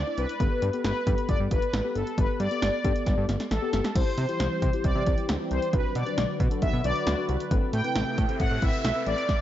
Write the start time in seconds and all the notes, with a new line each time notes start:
Already playing: D5
0.07 D4 E4 C5
0.17 C2 B4, closed hi-hat
0.29 closed hi-hat
0.40 G1 B3 G4 A4, kick, closed hi-hat
0.62 G2, closed hi-hat
0.73 B3 G4 A4, closed hi-hat
0.84 G1 B4, snare, closed hi-hat
1.07 G2 B3 G4 A4, kick, closed hi-hat
1.18 closed hi-hat
1.29 G1 D5, kick, closed hi-hat
1.40 G2
1.51 G1 B4, kick, closed hi-hat
1.62 closed hi-hat
1.73 A1, snare, closed hi-hat
1.84 B3 G4 A4
1.95 G1 A4, closed hi-hat
2.07 closed hi-hat
2.18 G1 B3 G4 A4 B4, kick, closed hi-hat
2.40 G2 D5, closed hi-hat
2.51 B3 G4 A4, closed hi-hat
2.62 G1, snare, closed hi-hat
2.84 G2 B3 G4 A4, kick, closed hi-hat
2.96 closed hi-hat
3.06 G1, kick, snare, closed hi-hat
3.18 G2
3.29 G1, snare, closed hi-hat
3.40 snare, closed hi-hat
3.51 A1 A4, snare, closed hi-hat
3.62 B3 G4 A4
3.73 G1, snare, closed hi-hat
3.84 snare, closed hi-hat
3.95 C2 E3 G3 C4 E4 G4 C5, kick, closed hi-hat, crash
4.18 C3, closed hi-hat
4.29 E4 G4 C5, closed hi-hat
4.40 C2, snare, closed hi-hat
4.62 C3, kick, closed hi-hat
4.73 E4 G4 C5, closed hi-hat
4.84 C2 D5, kick, closed hi-hat
4.95 C3
5.07 C2 E4 G4 C5, kick, closed hi-hat
5.18 closed hi-hat
5.29 D2, snare, closed hi-hat
5.40 E4 G4 C5
5.51 C2 C5, closed hi-hat
5.62 closed hi-hat
5.73 B1 D3 F#3 D4 F#4 B4, kick, closed hi-hat
5.95 B2 D5, closed hi-hat
6.06 D4 F#4 B4, closed hi-hat
6.18 B1, snare, closed hi-hat
6.40 B2, kick, closed hi-hat
6.51 D4 F#4 A4, closed hi-hat
6.62 B1 E5, kick, closed hi-hat
6.73 B2
6.84 B1 D4 F#4 B4 D5, closed hi-hat
6.96 closed hi-hat
7.07 D2, snare, closed hi-hat
7.18 D4 F#4 B4
7.29 C2, closed hi-hat
7.40 closed hi-hat
7.51 A1 C3 A3 C4 E4 A4 B4, kick, closed hi-hat, noise sweep
7.73 A2 G5, closed hi-hat
7.84 C4 A4 B4, closed hi-hat
7.95 A1, snare, closed hi-hat
8.18 A2, kick, closed hi-hat
8.29 C4 A4 C5, closed hi-hat
8.40 A1 F#5, kick, closed hi-hat
8.51 A2
8.62 A1 C4 A4 B4 E5, kick, closed hi-hat
8.73 closed hi-hat
8.84 B1, snare, closed hi-hat
8.96 C4 A4 B4
9.06 A1 D5, closed hi-hat
9.18 closed hi-hat
9.29 kick, snare